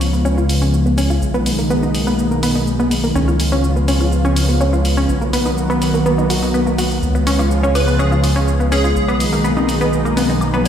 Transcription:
0.00 1.20 C#2 medium
0.00 1.20 C#3 medium
0.00 1.20 F3 medium
0.00 5.05 G#3 medium
0.00 1.20 B3 medium
0.00 1.20 F4 medium
0.00 open hi-hat medium
0.00 cabasa medium
0.13 0.25 B3 medium
0.13 cabasa soft
0.25 0.37 C#4 loud
0.25 cabasa soft
0.38 0.42 F4 medium
0.38 cabasa soft
0.49 open hi-hat medium
0.49 cabasa medium
0.62 0.73 C#4 medium
0.62 cabasa soft
0.74 cabasa soft
0.86 0.97 B3 medium
0.86 cabasa soft
0.98 1.10 C#4 loud
0.98 open hi-hat medium
0.98 cabasa medium
1.10 1.15 F4 medium
1.10 cabasa soft
1.22 3.13 B1 medium
1.22 3.13 B2 medium
1.22 3.13 D#3 medium
1.22 3.13 A#3 medium
1.22 3.13 D#4 loud
1.22 cabasa soft
1.34 1.46 B3 loud
1.34 cabasa soft
1.46 open hi-hat loud
1.46 cabasa medium
1.59 1.70 A#3 medium
1.59 cabasa soft
1.70 1.82 B3 loud
1.70 cabasa soft
1.83 1.88 D#4 medium
1.83 cabasa soft
1.95 open hi-hat medium
1.95 cabasa medium
2.07 2.18 B3 medium
2.07 cabasa soft
2.19 cabasa soft
2.31 2.42 A#3 medium
2.31 cabasa soft
2.43 2.55 B3 loud
2.43 open hi-hat loud
2.43 cabasa medium
2.55 2.60 D#4 medium
2.55 cabasa soft
2.67 cabasa soft
2.80 2.91 B3 medium
2.80 cabasa soft
2.91 open hi-hat medium
2.91 cabasa medium
3.04 3.15 A#3 medium
3.04 cabasa soft
3.15 5.07 C#2 medium
3.15 5.07 C#3 medium
3.15 5.07 F3 medium
3.15 8.92 B3 medium
3.15 3.27 C#4 loud
3.15 5.07 F4 medium
3.15 cabasa soft
3.28 3.33 F4 medium
3.28 cabasa soft
3.40 open hi-hat loud
3.40 cabasa medium
3.52 3.63 C#4 loud
3.52 cabasa soft
3.64 cabasa soft
3.76 3.87 B3 medium
3.76 cabasa soft
3.88 4.00 C#4 medium
3.88 open hi-hat medium
3.88 cabasa medium
4.01 4.05 F4 medium
4.01 cabasa soft
4.12 cabasa soft
4.25 4.36 C#4 loud
4.25 cabasa soft
4.36 open hi-hat loud
4.36 cabasa medium
4.49 4.60 B3 medium
4.49 cabasa soft
4.61 4.72 C#4 medium
4.61 cabasa soft
4.73 4.78 F4 medium
4.73 cabasa soft
4.85 open hi-hat medium
4.85 cabasa medium
4.97 5.08 C#4 medium
4.97 cabasa soft
5.09 7.00 B1 medium
5.09 7.01 D#3 medium
5.09 7.01 F#3 medium
5.09 7.01 A#3 medium
5.09 7.01 F#4 medium
5.09 cabasa soft
5.21 5.33 A#3 medium
5.21 cabasa soft
5.33 5.45 B3 loud
5.33 open hi-hat loud
5.33 cabasa medium
5.46 5.50 D#4 medium
5.46 cabasa soft
5.58 cabasa soft
5.70 5.81 B3 loud
5.70 cabasa soft
5.82 open hi-hat medium
5.82 cabasa medium
5.94 6.05 A#3 medium
5.94 cabasa soft
6.06 6.18 B3 loud
6.06 cabasa soft
6.18 6.23 D#4 medium
6.18 cabasa soft
6.30 6.35 F#4 medium
6.30 open hi-hat loud
6.30 cabasa medium
6.42 6.54 D#4 medium
6.42 cabasa soft
6.54 6.66 B3 medium
6.54 cabasa soft
6.67 6.78 A#3 medium
6.67 cabasa soft
6.78 6.90 F#4 medium
6.78 open hi-hat medium
6.78 cabasa medium
6.91 cabasa soft
7.03 8.94 C#2 medium
7.03 8.94 C#3 medium
7.03 8.94 F3 medium
7.03 10.68 G#3 medium
7.03 8.94 F4 medium
7.03 cabasa soft
7.15 7.26 B3 medium
7.15 cabasa soft
7.27 7.39 C#4 loud
7.27 open hi-hat loud
7.27 cabasa medium
7.39 7.44 F4 medium
7.39 cabasa soft
7.39 high woodblock soft
7.51 cabasa soft
7.63 7.75 C#4 medium
7.63 cabasa soft
7.75 8.01 B4 loud
7.75 open hi-hat medium
7.75 cabasa medium
7.75 high woodblock medium
7.88 7.99 B3 medium
7.88 cabasa soft
7.99 8.11 C#4 loud
7.99 8.48 G#4 medium
7.99 cabasa soft
8.12 8.17 F4 medium
8.12 cabasa soft
8.24 open hi-hat loud
8.24 cabasa medium
8.24 high woodblock soft
8.36 8.47 C#4 medium
8.36 cabasa soft
8.48 cabasa soft
8.60 8.71 B3 medium
8.60 cabasa soft
8.72 8.84 C#4 loud
8.72 10.13 G#4 loud
8.72 open hi-hat medium
8.72 cabasa medium
8.72 high woodblock soft
8.84 8.89 F4 medium
8.84 cabasa soft
8.96 10.68 B1 medium
8.96 10.68 B2 medium
8.96 10.68 D#3 medium
8.96 10.68 A#3 medium
8.96 10.68 D#4 loud
8.96 cabasa soft
9.08 9.20 B3 loud
9.08 cabasa soft
9.08 high woodblock medium
9.20 open hi-hat medium
9.20 cabasa medium
9.33 9.44 A#3 medium
9.33 cabasa soft
9.44 9.56 B3 medium
9.44 cabasa soft
9.57 9.62 D#4 medium
9.57 high conga medium
9.57 cabasa soft
9.57 high woodblock soft
9.69 open hi-hat medium
9.69 cabasa medium
9.81 9.92 B3 medium
9.81 cabasa soft
9.93 cabasa soft
10.05 10.16 A#3 medium
10.05 cabasa soft
10.05 high woodblock soft
10.17 10.29 B3 medium
10.17 open hi-hat medium
10.17 high conga medium
10.17 cabasa medium
10.29 10.34 D#4 medium
10.29 low conga medium
10.29 cabasa soft
10.41 cabasa soft
10.41 high woodblock medium
10.54 10.65 B3 loud
10.54 low conga medium
10.54 cabasa soft

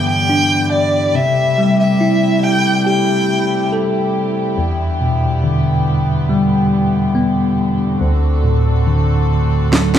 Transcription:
0.00 1.11 G2 medium
0.00 1.12 D3 medium
0.00 1.18 D3 soft
0.00 0.25 E3 soft
0.00 7.97 G3 soft
0.00 1.11 B3 soft
0.00 1.12 B3 medium
0.00 7.97 E4 soft
0.00 1.12 G4 medium
0.09 0.69 G5 medium
0.30 1.13 D4 soft
0.72 1.17 D5 medium
1.15 4.54 C3 medium
1.15 4.55 C3 medium
1.15 4.55 A3 medium
1.15 7.97 G4 medium
1.15 1.79 E5 medium
1.58 3.26 G3 soft
1.80 2.45 E5 medium
2.01 3.68 E4 soft
2.44 2.86 G5 medium
2.86 4.54 G4 soft
2.86 3.68 G5 medium
3.73 4.55 A4 soft
4.57 7.97 E2 medium
4.57 9.99 D3 medium
4.57 7.97 B3 medium
5.01 6.68 B2 soft
5.44 7.11 D3 soft
6.29 7.97 G3 soft
7.15 7.98 B3 soft
8.00 9.99 D2 medium
8.00 9.99 A3 medium
8.00 9.99 C4 medium
8.00 9.99 F#4 medium
8.00 9.99 A4 medium
8.44 9.99 A2 soft
8.87 9.99 D3 soft
9.72 9.99 F#3 soft
9.72 snare soft
9.95 snare soft

